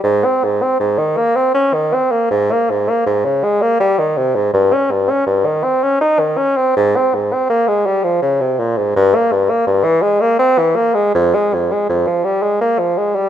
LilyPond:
\new Staff \with { instrumentName = "Bassoon" } { \clef bass \time 3/4 \key aes \major \tempo 4 = 81 aes,16 c'16 aes,16 c'16 aes,16 ees16 bes16 c'16 des'16 ees16 c'16 bes16 | aes,16 bes16 aes,16 bes16 aes,16 des16 aes16 bes16 g16 ees16 c16 aes,16 | g,16 des'16 g,16 des'16 g,16 ees16 c'16 des'16 ees'16 ees16 des'16 c'16 | aes,16 c'16 aes,16 c'16 bes16 aes16 g16 f16 des16 c16 bes,16 aes,16 |
g,16 bes16 g,16 bes16 g,16 e16 aes16 bes16 c'16 e16 bes16 aes16 | f,16 aes16 f,16 aes16 f,16 f16 g16 aes16 bes16 f16 aes16 g16 | }